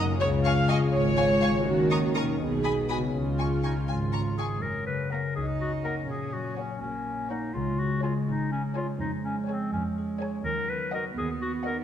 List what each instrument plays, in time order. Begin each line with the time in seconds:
Already playing: harp B2 A#3 D#4 D#5, french horn section A#3 D#4
0.02 harp C#3
0.06 harp G#3
0.11 harp F4
0.15 harp C#5
0.19 double bass section C#2, cello section C#3, french horn section G#3 F4, viola section C#5
0.44 viola section F5, violin section F5 G#5 C#6
0.69 viola section D#5, violin section F5 G#5 C#6
0.93 double bass section G#1, cello section G#2, viola section C#5
1.17 violin section F5 G#5 C#6
1.42 violin section F5 G#5 C#6
1.48 harp D#3
1.53 harp C#4
1.57 harp D#4
1.62 harp A#4
1.66 double bass section D#2, cello section D#3, french horn section A#3 C#4, viola section F#4
1.91 violin section A#5 C#6 D#6
2.14 viola section A#4, violin section A#5 C#6 D#6
2.22 harp B2
2.26 harp B3
2.30 harp D#4
2.35 harp G#4
2.40 double bass section B1, cello section B2, french horn section G#3 B3, viola section G#4
2.64 violin section G#5 B5 D#6
2.89 viola section F#4, violin section G#5 B5 D#6
2.95 harp C#3
3.00 harp G#3
3.04 harp C#4
3.09 harp G#4
3.14 double bass section C#2, cello section C#3, french horn section C#4, viola section F4
3.39 violin section G#5 C#6
3.63 clarinet D#4, violin section G#5 C#6
3.88 double bass section G#1, cello section G#2, clarinet F4, violin section G#5
4.13 violin section A#5 C#6
4.37 clarinet G#4, violin section G#5 C#6
4.61 double bass section F#2, harp F#2, clarinet A#4
4.86 harp C#3, clarinet B4
5.12 viola section A#3, harp C#4, clarinet A#4, violin section F#5 A#5
5.35 double bass section C#2, cello section D#4, harp F#4, clarinet G#4
5.61 harp C#4, clarinet F#4
5.84 harp A#3, viola section A#3, clarinet A#4, violin section F#5 A#5
6.09 double bass section A#1, harp A#2, cello section C#4, clarinet G#4
6.33 harp F#3, clarinet F#4
6.57 viola section A#3, clarinet C#4, harp C#4, violin section C#5 F#5
6.81 double bass section A#1, cello section A#3, clarinet C#4, harp F#4
7.06 harp C#4
7.30 harp A#3, viola section A#3, clarinet D#4, violin section C#5 F#5
7.55 double bass section C#2, harp C#3, cello section G#3, clarinet F4
7.79 harp G#3, clarinet F#4
8.03 viola section G#3, clarinet F4, harp G#4, violin section C#5 G#5
8.27 double bass section G#1, harp C#4, clarinet D#4
8.52 clarinet C#4, harp G#4
8.76 viola section G#3, harp C#4, clarinet F4, violin section C#5 G#5
9.00 double bass section F2, harp F3, cello section G#3, clarinet D#4
9.25 harp G#3, clarinet C#4
9.48 viola section G#3, clarinet C4, harp G#4, violin section C#5 G#5
9.73 double bass section F2, clarinet C#4, harp C#4
9.98 harp G#4
10.21 viola section G#3, harp C#4, violin section C#5 G#5
10.45 double bass section D#2, harp D#3, cello section F#3, clarinet A#4
10.69 harp B3, clarinet B4
10.93 viola section B3, harp F#4, clarinet A#4, violin section D#5 F#5
11.17 double bass section D#2, cello section B3, clarinet G#4, harp B4
11.42 clarinet F#4, harp F#4
11.65 viola section B3, harp D#4, clarinet A#4, violin section D#5 F#5